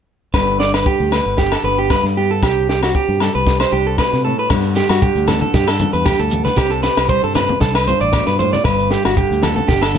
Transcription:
0.34 G1 G2 D3 B3 D4 G4 B4, kick, snare, low agogo
0.60 D4 D5, snare
0.74 B4, snare, low agogo
0.86 G4, kick
1.00 D2
1.12 D3 D4 B4, snare, low agogo
1.26 G1
1.38 G4, kick, snare
1.52 A4, snare, low agogo
1.64 G1 B3 B4
1.79 G4
1.90 G2 D4 B4, kick, snare, low agogo
2.04 G2, snare
2.17 B3 G4
2.31 A4
2.42 C2 C3 G4, kick, snare, low agogo
2.69 G4, snare
2.83 F#4, snare, low agogo
2.95 G4, kick
3.09 G2
3.20 G3 G4 A4, snare, low agogo
3.35 C2 B4
3.47 G4, kick, snare
3.60 C5, snare, low agogo
3.72 C2 D4 G4
3.87 A4
3.98 B2 B4, kick, snare, low agogo
4.13 C3, snare
4.25 A2 A4
4.39 B4
4.50 G2 D3 B3 D4 G4, muted clean electric guitar stroke, kick, snare, crash, low agogo, shekere
4.64 shekere
4.75 G4, snare, shekere
4.89 G2 F#4, snare, low agogo, shekere
5.02 D3 G4, kick, shekere
5.15 D2, shekere
5.28 B3 A4, snare, high conga, low conga, low agogo, shekere
5.41 A4, high conga
5.54 G2 G4, kick, snare, shekere
5.67 A4, snare, low agogo, shekere
5.79 G2, high conga, low conga, shekere
5.93 E2 B4, shekere
6.05 G4, kick, snare, low agogo, shekere
6.19 D2 A4, shekere
6.31 B3, low conga, shekere
6.45 B4, snare, high conga, shekere
6.56 C2 C3 G4, kick, snare, low agogo, shekere
6.70 A4, shekere
6.83 G4 B4, snare, shekere
6.96 C2, snare, low agogo, shekere
7.09 G3 C5, kick, shekere
7.23 G2 A4, shekere
7.35 D4 B4, snare, high conga, low conga, low agogo, shekere
7.49 high conga
7.61 C2 A4, kick, snare, shekere
7.75 B4, snare, low agogo, shekere
7.88 G2 C5, high conga, shekere
8.01 A1 D5, shekere
8.13 B2, kick, snare, low agogo, shekere
8.26 G2 B4, snare, shekere
8.39 A2 C5, low conga, shekere
8.53 D5, snare, high conga, shekere
8.64 G1 G2 B4, kick, snare, low agogo, shekere
8.79 shekere
8.91 G4, snare, shekere
9.05 G1 F#4, snare, low agogo, shekere
9.17 D3 G4, kick, shekere
9.31 D2, shekere
9.43 B3 A4, snare, high conga, low conga, low agogo, shekere
9.56 A4, high conga
9.68 G1 G4, kick, snare, shekere
9.82 A4, snare, low agogo, shekere
9.95 G2, high conga, low conga, shekere

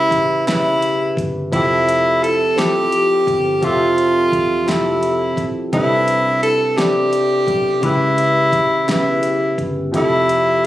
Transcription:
Already playing: C#2 C#3 C#4 E4 G4 B4
0.11 A1, kick, closed hi-hat
0.46 B1 C#3 C#4 E4, snare, closed hi-hat
0.51 G4 B4
0.82 closed hi-hat
1.17 G1, kick, closed hi-hat
1.51 F1 F3 C4 E4 G4, kick, closed hi-hat
1.57 A4
1.89 closed hi-hat
2.23 A4, closed hi-hat
2.56 F3 C4 E4 G4, snare, closed hi-hat
2.61 A4
2.92 closed hi-hat
3.27 G1, kick, closed hi-hat
3.61 F1 F3 C4 F4 G4 E5, kick, closed hi-hat
3.66 A4
3.98 closed hi-hat
4.32 E1, kick, closed hi-hat
4.66 F1 F3 C4 E4, snare, closed hi-hat
4.70 G4 A4
5.03 closed hi-hat
5.37 B1, kick, closed hi-hat
5.72 C2 C3 C4 D4 E4, kick, closed hi-hat
5.76 A4 B4
6.08 closed hi-hat
6.43 A4, closed hi-hat
6.76 C3 C4 D4 E4 G4, snare, closed hi-hat
6.80 A4 D5
7.13 closed hi-hat
7.47 B1, kick, closed hi-hat
7.80 C#2 C#3 C#4 E4, kick, closed hi-hat
7.85 G4 B4
8.18 closed hi-hat
8.52 A1, kick, closed hi-hat
8.86 B1 C#3 B3 E4 G4, snare, closed hi-hat
8.92 C#4 B4
9.23 closed hi-hat
9.58 G1, kick, closed hi-hat
9.92 F1 F3 C4 E4 G4, kick, closed hi-hat
9.96 E4 A4
10.29 closed hi-hat

